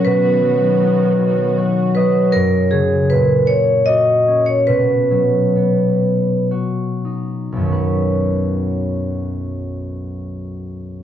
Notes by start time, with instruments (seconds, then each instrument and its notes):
Already playing: harp B3 C#4, string section F#4
0.05 harp B2, string section D#3 B3, vibraphone B4
0.42 harp F#3
0.81 harp D#4
1.19 harp F#3
1.58 harp F#4 F#5
1.94 harp F#3 D#5, vibraphone B4
2.32 harp F#2, vibraphone A#4
2.71 harp C#3, vibraphone G#4
3.10 harp A#2, vibraphone B4
3.47 vibraphone C#5
3.86 harp F#4, vibraphone D#5
4.28 harp C#4
4.46 vibraphone C#5
4.67 harp B2, vibraphone B4
5.11 harp F#3
5.56 harp B3
6.51 harp F#4
7.05 harp D#4
7.52 harp B1 F#2
7.61 harp D#3 B3
7.69 harp F#4 B4